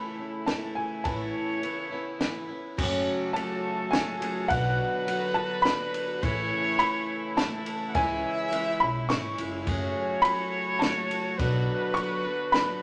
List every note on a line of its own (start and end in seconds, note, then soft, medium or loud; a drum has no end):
0.00 2.61 C#3 medium
0.00 0.18 E3 medium
0.00 1.04 E3 medium
0.00 0.19 A3 medium
0.00 2.61 A3 medium
0.00 0.18 C#4 medium
0.00 0.16 E4 medium
0.00 2.61 E4 medium
0.00 0.78 A4 medium
0.00 0.42 B5 medium
0.18 0.46 A3 soft
0.18 0.47 C#4 soft
0.18 0.47 E4 soft
0.46 1.03 E3 medium
0.46 1.05 A3 medium
0.46 1.05 C#4 medium
0.46 1.05 E4 medium
0.46 0.74 A5 medium
0.46 snare medium
0.46 ride medium
0.75 1.06 G#5 medium
1.04 1.31 A1 medium
1.04 1.62 A2 medium
1.04 1.60 E3 medium
1.04 2.61 B3 medium
1.04 1.62 B3 medium
1.04 1.62 C#4 medium
1.04 1.64 E4 medium
1.04 2.45 C#5 loud
1.04 2.45 A5 medium
1.04 kick loud
1.04 ride medium
1.61 1.91 E3 medium
1.61 1.92 B3 medium
1.61 1.91 C#4 medium
1.61 1.89 E4 medium
1.61 ride medium
1.90 2.20 B3 soft
1.90 2.20 C#4 soft
1.90 2.20 E4 soft
2.19 2.49 E3 medium
2.19 2.50 B3 medium
2.19 2.48 C#4 medium
2.19 2.46 E4 medium
2.19 snare medium
2.19 ride medium
2.47 2.78 B3 soft
2.47 2.78 C#4 soft
2.47 2.77 E4 medium
2.77 3.04 F#1 loud
2.77 3.35 F#2 loud
2.77 3.35 C#3 loud
2.77 4.49 C#3 medium
2.77 3.34 F#3 medium
2.77 4.49 A3 medium
2.77 3.35 A3 loud
2.77 3.36 C#4 loud
2.77 4.49 F#4 medium
2.77 4.52 A4 loud
2.77 kick loud
2.77 crash loud
3.33 3.91 F#3 medium
3.33 3.92 A3 medium
3.33 3.93 C#4 medium
3.33 3.94 A5 medium
3.33 ride medium
3.91 4.21 F#3 medium
3.91 4.22 A3 medium
3.91 4.21 C#4 medium
3.91 4.45 G#5 loud
3.91 snare loud
3.91 ride medium
3.95 4.20 G#4 medium
4.21 4.48 F#3 soft
4.21 4.50 A3 soft
4.21 4.51 C#4 soft
4.21 4.50 G#4 medium
4.21 ride medium
4.48 4.76 B1 loud
4.48 5.07 B2 medium
4.48 6.21 D3 medium
4.48 5.06 F#3 medium
4.48 6.21 F#3 medium
4.48 5.07 B3 medium
4.48 6.21 B3 medium
4.48 5.08 D4 medium
4.48 6.21 F#4 medium
4.48 5.08 F#4 medium
4.48 6.25 B4 loud
4.48 5.38 F#5 loud
4.48 kick loud
4.48 ride medium
5.07 5.63 F#3 medium
5.07 5.64 B3 medium
5.07 5.66 D4 medium
5.07 5.66 F#4 medium
5.07 ride medium
5.34 5.65 A5 loud
5.62 6.22 F#3 medium
5.62 6.23 B3 medium
5.62 6.04 B5 loud
5.62 snare medium
5.62 ride medium
5.67 6.23 D4 medium
5.67 6.24 F#4 medium
5.94 ride medium
6.22 6.48 A1 loud
6.22 6.80 A2 loud
6.22 11.35 C#3 medium
6.22 6.78 E3 loud
6.22 9.64 E3 medium
6.22 6.79 A3 loud
6.22 7.94 A3 medium
6.22 6.80 C#4 loud
6.22 9.64 E4 medium
6.22 6.82 E4 loud
6.22 7.68 C#5 loud
6.22 kick loud
6.22 ride medium
6.78 7.35 E3 medium
6.78 7.36 A3 medium
6.78 7.38 C#4 medium
6.78 7.38 E4 medium
6.78 7.39 B5 loud
6.78 ride medium
7.36 7.93 E3 medium
7.36 7.95 A3 medium
7.36 7.95 C#4 medium
7.36 7.95 E4 medium
7.36 7.91 A5 medium
7.36 snare medium
7.36 ride medium
7.66 ride medium
7.89 7.96 F#5 medium
7.94 8.20 C#2 loud
7.94 8.52 C#3 medium
7.94 8.50 E3 loud
7.94 8.52 G#3 medium
7.94 8.53 C#4 loud
7.94 8.53 E4 loud
7.94 9.38 E5 loud
7.94 8.84 G#5 loud
7.94 kick loud
7.94 ride medium
8.51 8.80 E3 medium
8.51 8.81 G#3 medium
8.51 8.81 C#4 medium
8.51 8.78 E4 medium
8.51 ride medium
8.80 9.07 B1 medium
8.80 9.09 G#3 soft
8.80 9.10 C#4 soft
8.80 9.09 E4 medium
8.80 9.10 B5 loud
9.09 9.36 G#1 medium
9.09 9.38 E3 medium
9.09 9.39 G#3 medium
9.09 9.38 C#4 medium
9.09 9.36 E4 medium
9.09 9.49 C#6 loud
9.09 snare medium
9.09 ride medium
9.38 9.64 F#1 medium
9.38 9.67 G#3 soft
9.38 9.67 C#4 soft
9.38 9.67 E4 medium
9.38 ride medium
9.66 10.24 F#2 medium
9.66 9.92 F#2 loud
9.66 10.24 C#3 medium
9.66 10.23 F#3 loud
9.66 11.37 A3 medium
9.66 10.23 A3 medium
9.66 10.24 C#4 loud
9.66 12.82 F#4 medium
9.66 10.25 G#4 loud
9.66 11.39 C#5 loud
9.66 kick loud
9.66 ride medium
10.22 10.81 A3 medium
10.22 10.82 C#4 medium
10.22 10.82 B5 loud
10.22 ride medium
10.27 10.83 G#4 medium
10.79 11.38 F#3 medium
10.79 11.39 A3 medium
10.79 11.34 A5 loud
10.79 snare loud
10.79 ride medium
10.83 11.40 C#4 medium
11.11 ride medium
11.38 11.65 B1 loud
11.38 11.96 B2 medium
11.38 12.82 D3 medium
11.38 11.94 F#3 medium
11.38 12.82 F#3 medium
11.38 12.82 B3 medium
11.38 11.96 B3 loud
11.38 11.97 D4 loud
11.38 11.97 F#4 medium
11.38 12.82 B4 loud
11.38 kick loud
11.38 ride medium
11.94 12.25 F#3 medium
11.94 12.25 B3 medium
11.94 12.25 D4 medium
11.94 12.54 C#6 loud
11.94 ride medium
11.99 12.23 F#4 medium
12.24 12.53 B3 soft
12.24 12.54 D4 soft
12.24 12.53 F#4 medium
12.52 12.82 F#3 medium
12.52 12.82 B3 medium
12.52 12.82 D4 medium
12.52 12.82 B5 loud
12.52 snare medium
12.52 ride medium
12.57 12.82 F#4 medium